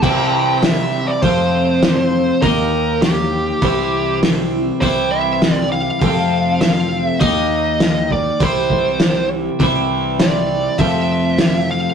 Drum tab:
CC |x-------|--------|--------|--------|
HH |--o-o-o-|o-o-o-o-|o-o-o-o-|o-o-o-o-|
SD |--o---o-|--o---o-|--o---o-|--o---o-|
BD |o---o---|o---o---|o---o---|o--ooo--|

CC |--------|
HH |o-o-o-o-|
SD |--o---o-|
BD |o---o---|